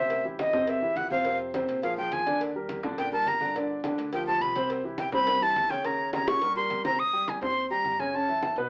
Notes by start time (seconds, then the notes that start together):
Already playing: A1 C3 C4 C5 E5
0.10 cowbell, high conga
0.25 E3 E4 G4, high conga
0.39 D#5, cowbell, high conga
0.53 E2 C3 C4 C5, high conga, low conga
0.67 E5, cowbell, high conga
0.82 E3 E4 G4, high conga
0.96 F2 F#5, cowbell, high conga
1.11 C3 C4 C5 F5, high conga
1.25 C3 C4 C5, cowbell, high conga
1.40 high conga
1.54 C3 C4 C5, cowbell, high conga
1.68 A#1, cowbell, high conga
1.82 F3 F4 G#4 F5, cowbell, high conga
1.97 F3 F4 G#4 G5, high conga
2.11 D#2 G#5, cowbell, high conga
2.26 D3 D4 D5, cowbell, high conga
2.40 cowbell, high conga
2.55 G3 G4 A#4, high conga
2.69 cowbell, high conga
2.83 A#1 D3 D4 D5, high conga, low conga
2.98 G5, cowbell, high conga, low conga
3.12 G3 G4 A#4 A5, high conga
3.26 G1 A#5, cowbell, high conga
3.41 D3 D4 D5, high conga
3.55 D3 D4 D5, cowbell, high conga
3.70 high conga
3.84 D3 D4 D5, cowbell, high conga
3.98 D2, cowbell, high conga
4.13 F3 F4 G4 G5, cowbell, high conga
4.27 F3 F4 G4 A5, high conga
4.41 C2 B5, cowbell, high conga
4.55 C3 C4 C5, cowbell, high conga
4.70 cowbell
4.84 E3 E4 G4, high conga
4.98 G5, cowbell, high conga
5.12 G2 C3 C4 C5 B5, high conga, low conga
5.27 cowbell, high conga, low conga
5.41 E3 E4 G4 A5, high conga
5.56 D#2, cowbell, high conga
5.70 C#3 C#4 C#5 G5, high conga
5.84 C#3 C#4 C#5 A#5, cowbell, high conga
5.99 high conga
6.13 C#3 C#4 C#5 A#5, cowbell, high bongo, high conga
6.27 A#1 C#6, cowbell, high bongo, high conga
6.42 G3 G4 A#4, cowbell, low bongo, high conga
6.56 G3 G4 A#4 C6, high conga
6.70 G#1, cowbell, high conga
6.85 C3 C4 C5 A#5, cowbell, low bongo, high conga
6.99 D#6, high conga
7.13 G3 G4 G5, high conga
7.28 G#5, high conga
7.41 D#2 C4 C5 C6, high conga, low conga
7.56 high conga
7.70 G3 G4 G5 A#5, high conga
7.84 F#2, high conga
7.99 C#3 C#4 C#5 G#5, high conga
8.14 C#3 C#4 C#5 A5, high conga
8.28 E3 E4 E5, high conga
8.43 high conga
8.56 B1 B2 B3 B4, high conga